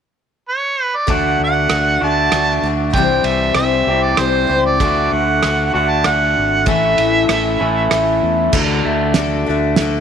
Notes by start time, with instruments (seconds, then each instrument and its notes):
0.49 harmonica C#5
0.84 harmonica B4
0.96 harmonica D5
1.07 fingered electric bass D2, twelve-string acoustic guitar D3 A3 D4 F#4 D5, clean electric guitar D3 A3 D4 F#4, kick, ride
1.12 harmonica F#5
1.40 fingered electric bass D2
1.44 harmonica F#5
1.69 fingered electric bass D2, twelve-string acoustic guitar A3 D4 F#4 D5, cross-stick, ride
2.01 fingered electric bass D2, clean electric guitar D3 A3 D4 F#4
2.05 harmonica A5
2.32 fingered electric bass D2, twelve-string acoustic guitar A3 D4 F#4 D5, cross-stick, ride
2.62 fingered electric bass D2, twelve-string acoustic guitar F#4 D5
2.67 twelve-string acoustic guitar D4
2.93 fingered electric bass C2, clean electric guitar C3 E3 G3 C4 G4, twelve-string acoustic guitar C3 E3, harmonica G5, kick, ride
2.97 twelve-string acoustic guitar G3 C4 E4 C5
3.24 fingered electric bass C2, harmonica E5, ride
3.55 fingered electric bass C2, twelve-string acoustic guitar G3, harmonica E5, cross-stick, ride
3.59 twelve-string acoustic guitar C4 E4 C5
3.87 fingered electric bass C2, clean electric guitar C3 E3 G3 C4 G4
4.03 harmonica D5
4.17 fingered electric bass C2, twelve-string acoustic guitar G3 C4 E4 C5, harmonica C5, cross-stick, ride
4.47 fingered electric bass C#2, twelve-string acoustic guitar G3 C4 E4 C5
4.66 harmonica D5
4.80 fingered electric bass D2, clean electric guitar D3 A3 D4 F#4, twelve-string acoustic guitar D3 A3 D4 F#4 A4, kick, ride
5.12 fingered electric bass D2, harmonica F#5
5.43 fingered electric bass D2, twelve-string acoustic guitar A3 D4 F#4, cross-stick, ride
5.47 twelve-string acoustic guitar A4
5.74 fingered electric bass D2, clean electric guitar D3 A3 D4 F#4, harmonica F#5
5.90 harmonica A5
6.04 fingered electric bass D2, twelve-string acoustic guitar A3 D4 F#4 A4, harmonica F#5, cross-stick, ride
6.38 fingered electric bass G#1
6.66 fingered electric bass A1, twelve-string acoustic guitar A2 E3 A3 C#4 E4 A4, clean electric guitar A2 E3 A3 C#4 E4, harmonica E5, kick, ride
6.98 fingered electric bass A1, ride
7.29 fingered electric bass A1, twelve-string acoustic guitar A3 C#4 E4 A4, cross-stick, ride
7.59 fingered electric bass A1, clean electric guitar A2 E3 A3 C#4 E4
7.91 fingered electric bass A1, twelve-string acoustic guitar A3 C#4 E4 A4, cross-stick, ride
8.23 fingered electric bass E2
8.53 fingered electric bass D2, twelve-string acoustic guitar D3 A3 D4 F#4 A4, clean electric guitar D3, kick, crash
8.85 fingered electric bass D2, clean electric guitar A3
9.14 twelve-string acoustic guitar A3 D4 F#4, clean electric guitar D4, snare, closed hi-hat
9.19 twelve-string acoustic guitar A4
9.46 fingered electric bass D2, clean electric guitar A3, twelve-string acoustic guitar D4 F#4 A4
9.76 fingered electric bass D2, clean electric guitar D3, twelve-string acoustic guitar A3, snare, closed hi-hat
9.81 twelve-string acoustic guitar D4 F#4 A4